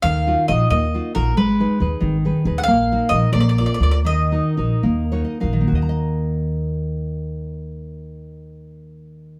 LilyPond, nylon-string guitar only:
\new Staff \with { instrumentName = "Nylon-string guitar" } { \time 6/8 \key ees \minor \tempo 4. = 82 << { r2. | r2. | r2. | r2 des''16 ees''16 f''8 |
r2. | r2. | } \\ { ees8 <ees' f' ges'>8 <ees' f' ges'>8 bes8 <ees' f' ges'>8 <ees' f' ges'>8 | aes8 <ees' aes' ces''>8 <ees' aes' ces''>8 ees8 <ees' aes' ces''>8 <ees' aes' ces''>8 | bes8 <ees' ges' bes'>8 <ees' ges' bes'>8 bes8 <f' bes' d''>8 <f' bes' d''>8 | ees8 <ees' ges' bes'>8 <ees' ges' bes'>8 bes8 <ees' ges' bes'>8 <ees' ges' bes'>8 |
<ees bes ges' ees'' bes''>2.~ | <ees bes ges' ees'' bes''>2. | } >> }